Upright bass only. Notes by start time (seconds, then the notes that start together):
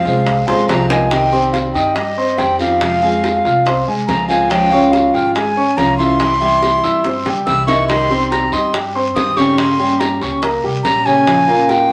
0.05 C2
0.68 C2
1.75 G2
2.38 F2
3.45 C2
3.87 C2
4.08 C#2
5.14 G#1
5.77 C2
6.83 G2
7.25 C#2
7.46 C2
8.52 G2
9.15 G2
10.21 C#2
10.63 C2
10.84 A#1